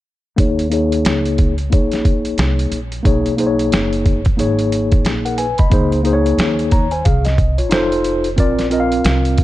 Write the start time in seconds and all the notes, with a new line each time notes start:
0.36 D#2 A#3 D#4 G#4 C#5, kick, closed hi-hat
0.59 closed hi-hat
0.70 A#3 D#4 G#4 C#5, closed hi-hat
0.92 closed hi-hat
1.05 C#2, snare, closed hi-hat
1.25 closed hi-hat
1.38 kick, closed hi-hat
1.58 closed hi-hat
1.70 A#1 A#3 D#4 G#4 C#5, kick, closed hi-hat
1.92 snare, closed hi-hat
2.05 kick, closed hi-hat
2.25 closed hi-hat
2.38 C2, snare, closed hi-hat
2.59 closed hi-hat
2.71 A#1, closed hi-hat
2.92 closed hi-hat
3.03 B1 A#3 D#4 G#4 C#5, kick, closed hi-hat
3.26 closed hi-hat
3.37 A#3 D#4 G#4 C5, closed hi-hat
3.47 C#5
3.59 closed hi-hat
3.72 F#1, snare, closed hi-hat
3.93 closed hi-hat
4.06 kick, closed hi-hat
4.25 kick, closed hi-hat
4.37 G#1 A#3 D#4 G#4 C#5, closed hi-hat
4.59 closed hi-hat
4.72 closed hi-hat
4.92 kick, closed hi-hat
5.05 A#1, snare, closed hi-hat
5.25 A#4 F#5, closed hi-hat
5.38 B4 G#5, closed hi-hat
5.58 D#5 B5, muted upright bass stroke, kick, closed hi-hat
5.70 C#2 A#3 D#4 G#4 C5, kick, closed hi-hat
5.92 closed hi-hat
6.03 A#3 D#4 G#4 C5, closed hi-hat
6.13 C#5
6.26 closed hi-hat
6.38 D#2, snare, closed hi-hat
6.59 closed hi-hat
6.71 C#5 A#5, kick, closed hi-hat
6.91 C5 G#5, closed hi-hat
7.05 C2 G#4 F5, kick, closed hi-hat
7.25 D#5, snare, closed hi-hat
7.38 kick, closed hi-hat
7.58 F4 C#5, closed hi-hat
7.69 F1 D#4 F4 A4 C5, snare, closed hi-hat
7.92 closed hi-hat
8.04 closed hi-hat
8.24 closed hi-hat
8.36 A#1 C4 F4 A#4 D5, kick, closed hi-hat
8.59 snare, closed hi-hat
8.70 C4 F4 A#4 D#5, closed hi-hat
8.80 F5
8.92 closed hi-hat
9.05 C2, snare, closed hi-hat
9.25 closed hi-hat
9.38 kick, closed hi-hat